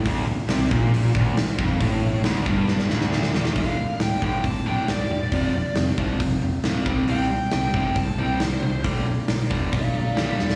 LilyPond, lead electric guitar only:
\new Staff \with { instrumentName = "Lead electric guitar" } { \time 4/4 \key d \minor \tempo 4 = 136 r1 | r1 | \key d \dorian f''4 g''8 g''8 a''8 g''8 d''4~ | d''4 r2. |
g''4 g''8 g''8 a''8 g''8 c''4 | r2 <d'' f''>8 <d'' f''>8 <d'' f''>8 <a' d''>8 | }